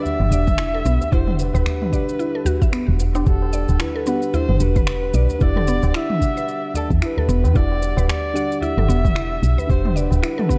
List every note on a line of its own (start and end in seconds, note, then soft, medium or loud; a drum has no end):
0.00 0.31 D4 loud
0.00 0.32 G4 medium
0.00 1.14 E5 loud
0.00 0.34 F#5 loud
0.05 tabla ge medium
0.05 shaker soft
0.20 0.30 G1 medium
0.20 mid tom medium
0.20 tabla na medium
0.31 0.82 E1 medium
0.31 0.45 D4 medium
0.31 0.45 G4 medium
0.31 0.41 D5 medium
0.31 0.46 F#5 medium
0.31 shaker medium
0.47 kick medium
0.47 mid tom medium
0.47 shaker soft
0.58 0.73 E4 medium
0.58 finger snap loud
0.58 shaker soft
0.74 0.85 A4 medium
0.74 tabla tin medium
0.85 0.99 B1 medium
0.85 1.01 B3 medium
0.85 shaker medium
1.01 tabla tin medium
1.01 tabla ge medium
1.01 shaker soft
1.11 1.51 E1 medium
1.11 1.89 D4 medium
1.11 1.27 E4 loud
1.11 1.90 G4 medium
1.11 1.41 C5 loud
1.11 1.91 F#5 loud
1.11 kick loud
1.11 shaker soft
1.27 mid tom medium
1.27 tabla na medium
1.39 3.00 B4 loud
1.39 tabla tin medium
1.39 shaker medium
1.54 1.64 D1 loud
1.54 1.66 B4 medium
1.54 tabla na medium
1.54 shaker soft
1.66 finger snap loud
1.66 tabla ge medium
1.66 shaker soft
1.82 mid tom medium
1.82 tabla na soft
1.91 3.23 D4 medium
1.91 3.25 G4 medium
1.91 2.02 D5 medium
1.91 kick medium
1.91 shaker medium
1.95 3.25 F#5 medium
2.09 shaker soft
2.19 2.34 E4 medium
2.19 shaker soft
2.35 2.46 A4 medium
2.45 2.61 F#4 loud
2.45 tabla ge loud
2.45 shaker medium
2.62 2.73 E5 medium
2.62 kick loud
2.62 shaker soft
2.73 2.88 B3 medium
2.73 finger snap loud
2.73 shaker soft
2.88 3.24 E1 medium
2.88 tabla ge medium
3.00 tabla tin medium
3.00 shaker medium
3.15 3.26 D4 medium
3.15 tabla na medium
3.15 tabla tin medium
3.15 shaker soft
3.24 3.65 E1 loud
3.24 4.03 D4 medium
3.24 4.04 G4 medium
3.24 4.05 F#5 medium
3.24 kick loud
3.24 shaker soft
3.29 3.83 A4 medium
3.42 tabla na medium
3.53 3.62 D5 medium
3.53 tabla tin medium
3.53 shaker medium
3.69 3.79 D1 medium
3.69 tabla na medium
3.69 shaker soft
3.80 3.94 E4 medium
3.80 4.36 B4 medium
3.80 finger snap loud
3.80 tabla ge medium
3.80 shaker soft
3.96 4.06 A4 medium
4.06 4.22 B3 medium
4.06 4.58 D4 medium
4.06 4.58 G4 medium
4.06 4.59 F#5 loud
4.06 shaker medium
4.22 shaker soft
4.34 4.49 E4 medium
4.34 4.63 C5 loud
4.34 tabla ge medium
4.34 shaker soft
4.49 4.59 G1 medium
4.49 mid tom medium
4.49 tabla na medium
4.59 5.11 E1 medium
4.59 4.73 D4 medium
4.59 4.73 G4 medium
4.59 5.44 B4 loud
4.59 4.74 F#5 medium
4.59 shaker medium
4.76 4.87 B4 medium
4.76 kick medium
4.76 mid tom medium
4.76 shaker soft
4.87 finger snap loud
4.87 shaker soft
5.03 tabla tin medium
5.14 5.27 B1 medium
5.14 5.23 D5 medium
5.14 shaker medium
5.30 tabla tin soft
5.30 tabla ge medium
5.30 shaker soft
5.39 5.80 E1 medium
5.39 6.18 D4 medium
5.39 5.55 E4 medium
5.39 6.19 G4 medium
5.39 5.97 D5 loud
5.39 6.20 F#5 loud
5.39 kick loud
5.39 shaker soft
5.56 5.68 A4 medium
5.56 mid tom medium
5.56 tabla na medium
5.67 5.83 B3 medium
5.67 tabla tin medium
5.67 shaker medium
5.83 5.93 D1 medium
5.83 tabla na medium
5.83 shaker soft
5.94 6.10 E4 loud
5.94 6.75 E5 loud
5.94 finger snap medium
5.94 shaker soft
6.10 mid tom medium
6.19 7.51 D4 medium
6.19 7.53 G4 medium
6.19 kick medium
6.19 shaker medium
6.23 7.53 F#5 medium
6.37 6.48 B4 medium
6.37 shaker soft
6.48 shaker soft
6.74 6.88 A4 medium
6.74 6.84 D5 medium
6.74 tabla ge medium
6.74 shaker medium
6.90 7.00 E2 loud
6.90 kick loud
6.90 shaker soft
7.02 7.16 E4 medium
7.02 7.57 B4 medium
7.02 finger snap medium
7.02 shaker soft
7.17 7.28 A4 medium
7.17 tabla ge medium
7.28 7.45 E1 medium
7.28 7.43 B3 medium
7.28 tabla tin medium
7.28 shaker medium
7.44 7.54 E2 loud
7.44 tabla na medium
7.44 tabla tin soft
7.44 shaker soft
7.53 7.94 E1 medium
7.53 8.32 D4 medium
7.53 7.70 E4 loud
7.53 8.33 G4 medium
7.53 8.09 D5 loud
7.53 8.34 F#5 loud
7.53 kick loud
7.53 shaker soft
7.71 tabla na medium
7.82 tabla tin medium
7.82 shaker medium
7.97 8.07 D1 medium
7.97 8.09 B4 medium
7.97 tabla na medium
7.97 shaker soft
8.08 8.59 D5 medium
8.08 finger snap loud
8.08 tabla ge medium
8.08 shaker soft
8.34 8.86 D4 loud
8.34 8.86 G4 medium
8.34 8.45 D5 medium
8.34 8.87 F#5 loud
8.34 shaker medium
8.52 shaker soft
8.61 8.76 E4 medium
8.61 9.71 E5 loud
8.61 tabla ge medium
8.61 shaker soft
8.77 8.87 G1 medium
8.77 8.89 A4 medium
8.77 mid tom medium
8.77 tabla na medium
8.87 9.40 E1 medium
8.87 9.04 B3 medium
8.87 9.01 D4 medium
8.87 9.02 G4 medium
8.87 9.02 F#5 loud
8.87 shaker medium
9.05 kick medium
9.05 mid tom medium
9.05 shaker soft
9.15 9.30 E4 loud
9.15 finger snap loud
9.15 shaker soft
9.31 tabla tin soft
9.43 9.56 B1 medium
9.43 shaker medium
9.58 9.69 B4 medium
9.58 tabla tin medium
9.58 tabla ge medium
9.58 shaker soft
9.67 10.08 E1 loud
9.67 10.46 D4 medium
9.67 10.47 G4 medium
9.67 9.98 C5 loud
9.67 kick loud
9.67 shaker soft
9.71 10.48 F#5 loud
9.85 mid tom medium
9.85 tabla na medium
9.95 10.58 B4 medium
9.95 10.05 D5 medium
9.95 tabla tin medium
9.95 shaker medium
10.11 10.21 D1 loud
10.11 tabla na medium
10.11 shaker soft
10.23 10.37 E4 medium
10.23 finger snap loud
10.23 shaker soft
10.38 10.49 A4 medium
10.38 mid tom medium
10.38 tabla na soft
10.48 10.58 B3 medium
10.48 10.58 D4 medium
10.48 10.58 G4 medium
10.48 10.58 F#5 medium
10.48 kick medium
10.48 tabla tin soft
10.48 shaker medium